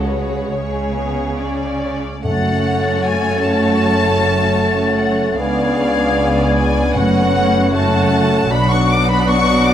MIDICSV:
0, 0, Header, 1, 11, 480
1, 0, Start_track
1, 0, Key_signature, 3, "minor"
1, 0, Tempo, 867052
1, 1244, Tempo, 807537
1, 1245, Time_signature, 4, 2, 24, 8
1, 1724, Tempo, 782269
1, 4124, Tempo, 768246
1, 5855, End_track
2, 0, Start_track
2, 0, Title_t, "Flute section"
2, 0, Program_c, 0, 73
2, 1248, Note_on_c, 0, 93, 51
2, 3141, Note_off_c, 0, 93, 0
2, 3165, Note_on_c, 0, 92, 50
2, 4113, Note_on_c, 0, 90, 52
2, 4125, Note_off_c, 0, 92, 0
2, 5855, Note_off_c, 0, 90, 0
2, 5855, End_track
3, 0, Start_track
3, 0, Title_t, "Violin section"
3, 0, Program_c, 1, 48
3, 0, Note_on_c, 1, 73, 47
3, 767, Note_off_c, 1, 73, 0
3, 767, Note_on_c, 1, 74, 44
3, 1220, Note_off_c, 1, 74, 0
3, 1242, Note_on_c, 1, 78, 62
3, 1713, Note_off_c, 1, 78, 0
3, 1725, Note_on_c, 1, 80, 65
3, 1959, Note_on_c, 1, 81, 69
3, 1961, Note_off_c, 1, 80, 0
3, 2905, Note_on_c, 1, 78, 55
3, 2921, Note_off_c, 1, 81, 0
3, 3145, Note_on_c, 1, 77, 61
3, 3155, Note_off_c, 1, 78, 0
3, 3874, Note_off_c, 1, 77, 0
3, 3886, Note_on_c, 1, 80, 61
3, 4121, Note_off_c, 1, 80, 0
3, 4121, Note_on_c, 1, 78, 73
3, 4607, Note_off_c, 1, 78, 0
3, 4614, Note_on_c, 1, 81, 72
3, 5084, Note_off_c, 1, 81, 0
3, 5099, Note_on_c, 1, 83, 77
3, 5215, Note_off_c, 1, 83, 0
3, 5215, Note_on_c, 1, 85, 67
3, 5332, Note_off_c, 1, 85, 0
3, 5348, Note_on_c, 1, 86, 78
3, 5457, Note_off_c, 1, 86, 0
3, 5464, Note_on_c, 1, 83, 74
3, 5573, Note_off_c, 1, 83, 0
3, 5574, Note_on_c, 1, 85, 86
3, 5806, Note_on_c, 1, 86, 91
3, 5807, Note_off_c, 1, 85, 0
3, 5855, Note_off_c, 1, 86, 0
3, 5855, End_track
4, 0, Start_track
4, 0, Title_t, "Clarinet"
4, 0, Program_c, 2, 71
4, 1241, Note_on_c, 2, 73, 45
4, 3137, Note_off_c, 2, 73, 0
4, 3167, Note_on_c, 2, 74, 49
4, 4119, Note_on_c, 2, 73, 57
4, 4128, Note_off_c, 2, 74, 0
4, 5089, Note_off_c, 2, 73, 0
4, 5094, Note_on_c, 2, 74, 57
4, 5855, Note_off_c, 2, 74, 0
4, 5855, End_track
5, 0, Start_track
5, 0, Title_t, "Violin section"
5, 0, Program_c, 3, 48
5, 0, Note_on_c, 3, 66, 35
5, 55, Note_on_c, 3, 71, 34
5, 283, Note_off_c, 3, 66, 0
5, 294, Note_off_c, 3, 71, 0
5, 306, Note_on_c, 3, 73, 42
5, 308, Note_on_c, 3, 68, 36
5, 1120, Note_off_c, 3, 73, 0
5, 1138, Note_off_c, 3, 68, 0
5, 1254, Note_on_c, 3, 66, 49
5, 1255, Note_on_c, 3, 73, 47
5, 3144, Note_off_c, 3, 66, 0
5, 3144, Note_off_c, 3, 73, 0
5, 3166, Note_on_c, 3, 74, 51
5, 3170, Note_on_c, 3, 68, 48
5, 4106, Note_off_c, 3, 74, 0
5, 4121, Note_on_c, 3, 66, 50
5, 4121, Note_on_c, 3, 78, 49
5, 4127, Note_off_c, 3, 68, 0
5, 4597, Note_off_c, 3, 66, 0
5, 4601, Note_off_c, 3, 78, 0
5, 4605, Note_on_c, 3, 66, 53
5, 4608, Note_on_c, 3, 78, 52
5, 5080, Note_off_c, 3, 66, 0
5, 5082, Note_off_c, 3, 78, 0
5, 5088, Note_on_c, 3, 78, 59
5, 5090, Note_on_c, 3, 66, 60
5, 5855, Note_off_c, 3, 66, 0
5, 5855, Note_off_c, 3, 78, 0
5, 5855, End_track
6, 0, Start_track
6, 0, Title_t, "French horn section"
6, 0, Program_c, 4, 60
6, 1242, Note_on_c, 4, 61, 36
6, 1245, Note_on_c, 4, 57, 36
6, 3138, Note_off_c, 4, 61, 0
6, 3140, Note_off_c, 4, 57, 0
6, 3152, Note_on_c, 4, 62, 44
6, 3161, Note_on_c, 4, 59, 42
6, 4099, Note_off_c, 4, 62, 0
6, 4103, Note_off_c, 4, 59, 0
6, 4113, Note_on_c, 4, 61, 48
6, 4118, Note_on_c, 4, 57, 45
6, 4978, Note_off_c, 4, 57, 0
6, 4978, Note_off_c, 4, 61, 0
6, 5084, Note_on_c, 4, 54, 53
6, 5087, Note_on_c, 4, 62, 48
6, 5855, Note_off_c, 4, 54, 0
6, 5855, Note_off_c, 4, 62, 0
6, 5855, End_track
7, 0, Start_track
7, 0, Title_t, "Viola section"
7, 0, Program_c, 5, 48
7, 0, Note_on_c, 5, 56, 46
7, 513, Note_off_c, 5, 56, 0
7, 531, Note_on_c, 5, 59, 39
7, 771, Note_off_c, 5, 59, 0
7, 774, Note_on_c, 5, 61, 36
7, 1236, Note_off_c, 5, 61, 0
7, 1242, Note_on_c, 5, 61, 42
7, 1246, Note_on_c, 5, 57, 45
7, 3138, Note_off_c, 5, 61, 0
7, 3140, Note_off_c, 5, 57, 0
7, 3161, Note_on_c, 5, 61, 50
7, 3163, Note_on_c, 5, 59, 46
7, 4103, Note_off_c, 5, 61, 0
7, 4104, Note_off_c, 5, 59, 0
7, 4125, Note_on_c, 5, 57, 43
7, 4126, Note_on_c, 5, 61, 50
7, 4599, Note_off_c, 5, 57, 0
7, 4600, Note_off_c, 5, 61, 0
7, 4612, Note_on_c, 5, 57, 51
7, 4612, Note_on_c, 5, 61, 51
7, 5083, Note_off_c, 5, 57, 0
7, 5083, Note_off_c, 5, 61, 0
7, 5105, Note_on_c, 5, 62, 52
7, 5108, Note_on_c, 5, 59, 58
7, 5855, Note_off_c, 5, 59, 0
7, 5855, Note_off_c, 5, 62, 0
7, 5855, End_track
8, 0, Start_track
8, 0, Title_t, "Bassoon"
8, 0, Program_c, 6, 70
8, 1236, Note_on_c, 6, 57, 40
8, 3135, Note_off_c, 6, 57, 0
8, 3160, Note_on_c, 6, 59, 41
8, 4596, Note_on_c, 6, 57, 48
8, 4606, Note_off_c, 6, 59, 0
8, 5077, Note_off_c, 6, 57, 0
8, 5081, Note_on_c, 6, 54, 50
8, 5855, Note_off_c, 6, 54, 0
8, 5855, End_track
9, 0, Start_track
9, 0, Title_t, "Cello section"
9, 0, Program_c, 7, 48
9, 0, Note_on_c, 7, 49, 34
9, 287, Note_off_c, 7, 49, 0
9, 294, Note_on_c, 7, 49, 41
9, 1115, Note_off_c, 7, 49, 0
9, 1239, Note_on_c, 7, 42, 45
9, 3136, Note_off_c, 7, 42, 0
9, 3161, Note_on_c, 7, 37, 44
9, 4103, Note_off_c, 7, 37, 0
9, 4118, Note_on_c, 7, 42, 56
9, 5088, Note_off_c, 7, 42, 0
9, 5093, Note_on_c, 7, 47, 48
9, 5855, Note_off_c, 7, 47, 0
9, 5855, End_track
10, 0, Start_track
10, 0, Title_t, "Timpani"
10, 0, Program_c, 8, 47
10, 1243, Note_on_c, 8, 42, 52
10, 1935, Note_off_c, 8, 42, 0
10, 4119, Note_on_c, 8, 42, 48
10, 4823, Note_off_c, 8, 42, 0
10, 5855, End_track
11, 0, Start_track
11, 0, Title_t, "Double bass section"
11, 0, Program_c, 10, 48
11, 0, Note_on_c, 10, 37, 41
11, 283, Note_off_c, 10, 37, 0
11, 289, Note_on_c, 10, 37, 39
11, 1112, Note_off_c, 10, 37, 0
11, 1238, Note_on_c, 10, 30, 42
11, 3136, Note_off_c, 10, 30, 0
11, 3159, Note_on_c, 10, 37, 50
11, 4102, Note_off_c, 10, 37, 0
11, 4123, Note_on_c, 10, 30, 57
11, 5087, Note_on_c, 10, 35, 57
11, 5091, Note_off_c, 10, 30, 0
11, 5855, Note_off_c, 10, 35, 0
11, 5855, End_track
0, 0, End_of_file